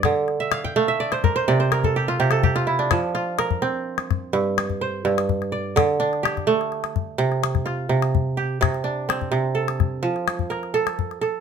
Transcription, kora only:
X:1
M:12/8
L:1/16
Q:3/8=84
K:F
V:1 name="Kora"
d2 z e f g f e d c B c d c B A G F G A G F E D- | D z F2 B6 z6 c6 d2- | d2 D2 G6 z6 F6 G2- | G2 D2 C4 A6 z2 B6 A2 |]
V:2 name="Kora" clef=bass
D,4 z2 A,4 z2 C,4 z2 C,4 z2 | F,4 z2 C4 z2 G,,4 z2 G,,4 z2 | D,4 z2 A,4 z2 C,4 z2 C,4 z2 | C,4 z2 C,4 z2 F,4 z2 A4 z2 |]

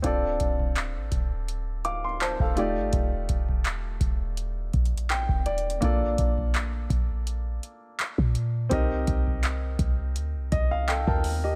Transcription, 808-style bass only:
X:1
M:4/4
L:1/16
Q:"Swing 16ths" 1/4=83
K:Bb
V:1 name="808-style bass" clef=bass
D,,,2 D,,,3 A,,, D,,,6- D,,, E,,,2 G,,, | E,,,2 E,,,4 E,,,4 B,,,3 E,,,3 | B,,,2 B,,,4 B,,,4 z3 B,,3 | C,,2 C,,4 C,,2 D,, C,, C,,3 E,,3 |]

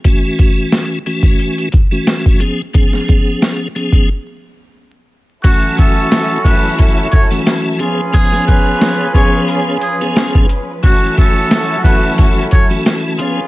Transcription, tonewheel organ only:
X:1
M:4/4
L:1/16
Q:"Swing 16ths" 1/4=89
K:F#m
V:1 name="Tonewheel organ"
[E,A,CF]6 [E,A,CF]4 z [E,A,CF]3 [^E,B,CG] z | [^E,B,CG]6 [E,B,CG]2 z8 | [E,A,CF]6 [E,A,CF]4 z [E,A,CF]3 [^E,B,CG] z | [^E,B,CG]6 [E,B,CG]4 z [E,B,CG]3 z2 |
[E,A,CF]6 [E,A,CF]4 z [E,A,CF]3 [^E,B,CG] z |]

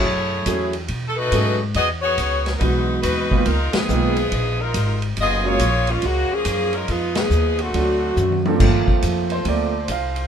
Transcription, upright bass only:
X:1
M:4/4
L:1/8
Q:"Swing" 1/4=140
K:Gb
V:1 name="Upright bass" clef=bass
G,,2 _F,,2 =B,,2 ^G,,2 | =E,,2 D,,2 =B,,,2 ^D,, z | D,, z C,,2 B,,,2 A,,,2 | G,,,2 B,,,2 D,, z G,,2 |
F,,2 E,,2 =D,,2 ^F,,2 | [K:Gm] G,, z F,,2 D,,2 C,,2 |]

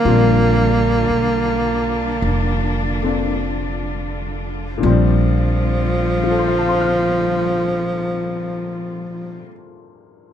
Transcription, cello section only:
X:1
M:4/4
L:1/8
Q:"Swing" 1/4=44
K:Bb
V:1 name="Cello section"
[D,G,DF]8 | [D,G,B,CF]8 |]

